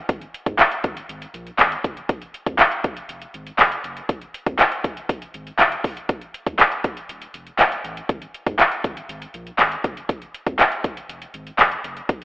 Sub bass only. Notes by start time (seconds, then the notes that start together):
0.09 G#1
0.46 G#2
0.84 G#1
1.09 G#1
1.34 A#1
1.59 G#1
1.84 F#1
2.09 F1
2.46 F2
2.84 F1
3.09 F1
3.34 G#1
3.59 F1
3.84 F#1
4.09 F1
4.46 F2
4.84 F1
5.09 F1
5.34 G#1
5.59 F1
5.84 E1
6.09 D#1
6.47 D#2
6.84 D#1
7.09 D#1
7.34 F1
7.59 D#1
7.84 A1
8.09 G#1
8.46 G#2
8.84 G#1
9.09 G#1
9.34 A#1
9.59 G#1
9.84 F#1
10.09 F1
10.47 F2
10.84 F1
11.09 F1
11.34 G#1
11.59 F1
11.84 F#1
12.09 F1